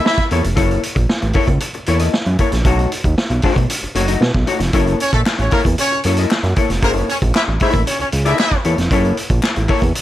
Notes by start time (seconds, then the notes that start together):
0.05 E4 E5, muted hollow-body jazz guitar stroke, snare
0.17 kick, snare, closed hi-hat
0.31 E2 A#3 E4 A4 C#5, closed hi-hat
0.43 F1, muted hollow-body jazz guitar stroke, closed hi-hat
0.56 F#1 A#3 E4 A4 C#5, kick, closed hi-hat
0.71 closed hi-hat
0.83 closed hi-hat
0.95 A#1, muted hollow-body jazz guitar stroke, kick, closed hi-hat
1.09 snare
1.22 A1, muted hollow-body jazz guitar stroke, closed hi-hat
1.33 A#3 E4 A4 C#5, kick, open hi-hat
1.47 C#2, muted hollow-body jazz guitar stroke, kick, closed hi-hat
1.60 muted hollow-body jazz guitar stroke, closed hi-hat
1.74 muted hollow-body jazz guitar stroke, closed hi-hat
1.86 E2 A#3 E4 A4 C#5, closed hi-hat
1.99 A#3 E4 A4 D#5, closed hi-hat
2.13 muted hollow-body jazz guitar stroke, snare
2.26 F#2, closed hi-hat
2.39 A#3 E4 A4 C#5, kick, closed hi-hat
2.52 A#1, muted hollow-body jazz guitar stroke, snare, closed hi-hat
2.65 B1 A3 D#4 F#4 C#5, kick, closed hi-hat
2.79 closed hi-hat
2.92 closed hi-hat
3.04 D#2, muted hollow-body jazz guitar stroke, kick, closed hi-hat
3.18 snare
3.30 B1, muted hollow-body jazz guitar stroke, closed hi-hat
3.42 A3 D#4 F#4 C#5, kick, open hi-hat
3.56 B1, muted hollow-body jazz guitar stroke, kick, closed hi-hat
3.70 muted hollow-body jazz guitar stroke, closed hi-hat
3.82 F#1, muted hollow-body jazz guitar stroke, closed hi-hat
3.95 F#1 A3 D#4 F#4 C#5, closed hi-hat
4.08 A3 D#4 F#4 D#5, closed hi-hat
4.21 B2, muted hollow-body jazz guitar stroke, snare
4.34 B1, kick, snare
4.47 A3 D#4 F#4 C#5, closed hi-hat
4.59 F1, muted hollow-body jazz guitar stroke, snare, closed hi-hat
4.73 F#1 A#3 E4 A4 C#5, kick, closed hi-hat
4.87 closed hi-hat
5.00 C#4 C#5, closed hi-hat
5.13 A#1 A3 A4, muted hollow-body jazz guitar stroke, kick, closed hi-hat
5.26 snare, clap
5.39 A1 C#4 C#5, muted hollow-body jazz guitar stroke, closed hi-hat
5.51 A#3 E4 A4 A#4 C#5, kick, open hi-hat
5.65 E2, muted hollow-body jazz guitar stroke, kick, closed hi-hat
5.78 C#4 C#5, muted hollow-body jazz guitar stroke, closed hi-hat
5.92 muted hollow-body jazz guitar stroke
6.04 F#2 A#3 E4 A4 C#5, closed hi-hat
6.17 A#3 E4 A4 D#5, closed hi-hat
6.31 muted hollow-body jazz guitar stroke, snare, clap
6.43 F#2, snare, closed hi-hat
6.56 A#3 E4 A4 C#5, kick, closed hi-hat
6.70 F1, muted hollow-body jazz guitar stroke, snare, closed hi-hat
6.82 F#1 A#3 E4 A4 A#4 C#5, kick, closed hi-hat
6.97 closed hi-hat
7.09 C#4 C#5, closed hi-hat
7.22 A#1, muted hollow-body jazz guitar stroke, kick, closed hi-hat
7.35 E4 E5, snare, clap
7.48 A1, muted hollow-body jazz guitar stroke
7.60 A#3 E4 A4 C#5 E5, kick, open hi-hat
7.74 A1, muted hollow-body jazz guitar stroke, kick, closed hi-hat
7.86 C#4 C#5, muted hollow-body jazz guitar stroke, closed hi-hat
7.99 C#2 C#4 C#5, muted hollow-body jazz guitar stroke, closed hi-hat
8.12 C#2, closed hi-hat
8.25 A#3 E4 A4 D#5 E5, closed hi-hat
8.39 E4 E5, muted hollow-body jazz guitar stroke, snare, clap
8.51 kick, snare, closed hi-hat
8.64 E2 A#3 E4 A4 C#5, closed hi-hat
8.78 F1, muted hollow-body jazz guitar stroke, snare, closed hi-hat
8.91 F#1 A#3 E4 A4 C#5, kick, closed hi-hat
9.05 closed hi-hat
9.17 closed hi-hat
9.30 A#1, muted hollow-body jazz guitar stroke, kick, closed hi-hat
9.43 snare, clap
9.56 A1, muted hollow-body jazz guitar stroke, closed hi-hat
9.68 A#3 E4 A4 C#5, kick, open hi-hat
9.82 E2, muted hollow-body jazz guitar stroke, kick, closed hi-hat
9.95 muted hollow-body jazz guitar stroke, closed hi-hat